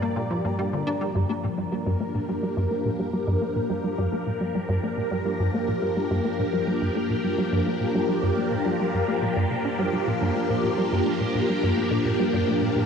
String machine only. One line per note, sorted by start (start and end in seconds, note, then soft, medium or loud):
0.00 1.14 F3 medium
0.00 1.15 A#3 medium
0.00 1.15 D4 medium
0.00 1.16 G4 medium
0.00 1.18 D5 medium
1.16 12.86 F3 medium
1.53 12.86 A#3 medium
1.75 12.86 A#4 medium
2.02 12.86 D4 medium
2.13 12.86 G4 medium